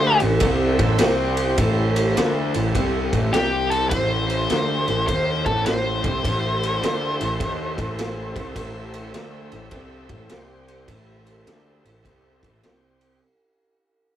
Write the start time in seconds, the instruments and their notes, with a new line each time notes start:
Already playing: picked electric bass D2, overdriven electric guitar D3 A3 D4, tonewheel organ A4 C5 E5, lead electric guitar C5
0.20 picked electric bass A1, overdriven electric guitar A2 E3, ride
0.40 picked electric bass C2, overdriven electric guitar C3 G3 C4, kick, ride
0.79 picked electric bass A1, overdriven electric guitar A2 E3 A3, kick, ride
0.98 picked electric bass C2, overdriven electric guitar C3 G3 C4, tonewheel organ C4 G4 C5, snare, ride
1.37 ride
1.57 picked electric bass A1, overdriven electric guitar A2 E3 A3, tonewheel organ E4 A4 C5, kick, ride
1.96 ride
2.15 picked electric bass D2, overdriven electric guitar D3 A3 D4, snare, ride
2.54 picked electric bass A1, overdriven electric guitar A2 E3, ride
2.74 picked electric bass C2, overdriven electric guitar C3 G3 C4, kick, ride
3.13 picked electric bass A1, overdriven electric guitar A2 E3 A3, kick, ride
3.33 picked electric bass C2, overdriven electric guitar C3 G3 C4, tonewheel organ C4 G4 C5, lead electric guitar G4, snare, ride
3.70 lead electric guitar A4, ride
3.90 picked electric bass A1, overdriven electric guitar A2 E3 A3, tonewheel organ E4 A4 C5, lead electric guitar C5, kick, ride
4.30 ride
4.49 picked electric bass D2, overdriven electric guitar D3 A3 D4, snare, ride
4.88 picked electric bass A1, overdriven electric guitar A2 E3, ride
5.07 picked electric bass D#2, overdriven electric guitar D#3 A#3 D#4, lead electric guitar C5, kick, ride
5.46 picked electric bass A1, overdriven electric guitar A2 E3 A3, lead electric guitar A4, kick, ride
5.66 lead electric guitar C5, snare, ride
6.04 picked electric bass C2, overdriven electric guitar C3 G3 C4, kick, ride
6.24 picked electric bass A1, overdriven electric guitar A2 E3 A3, tonewheel organ E4 A4 C5, kick, ride
6.63 ride
6.81 picked electric bass D2, overdriven electric guitar D3 A3 D4, snare, ride
7.20 picked electric bass A1, overdriven electric guitar A2 E3, ride
7.40 picked electric bass D#2, overdriven electric guitar D#3 A#3 D#4, kick, ride
7.78 picked electric bass A1, overdriven electric guitar A2 E3 A3, kick, ride
7.99 snare, ride
8.35 picked electric bass C2, overdriven electric guitar C3 G3 C4, kick, ride
8.56 picked electric bass A1, overdriven electric guitar A2 E3 A3, tonewheel organ A4 C5 E5, kick, ride
8.94 ride
9.13 picked electric bass D2, overdriven electric guitar D3 A3 D4, snare, ride
9.51 picked electric bass A1, overdriven electric guitar A2 E3, ride
9.71 picked electric bass C2, overdriven electric guitar C3 G3 C4, kick, ride
10.09 picked electric bass A1, overdriven electric guitar A2 E3 A3, kick, ride
10.29 picked electric bass C2, overdriven electric guitar C3 G3 C4, tonewheel organ C4 G4 C5, snare, ride
10.68 ride
10.87 picked electric bass A1, overdriven electric guitar A2 E3 A3, tonewheel organ E4 A4 C5, kick, ride
11.26 ride
11.46 picked electric bass D2, overdriven electric guitar D3 A3 D4, snare, ride
11.84 picked electric bass A1, overdriven electric guitar A2 E3, ride
12.04 picked electric bass C2, overdriven electric guitar C3 G3 C4, kick, ride
12.42 picked electric bass A1, overdriven electric guitar A2 E3 A3, kick, ride
12.63 picked electric bass C2, overdriven electric guitar C3 G3 C4, tonewheel organ C4 G4 C5, snare, ride
13.01 ride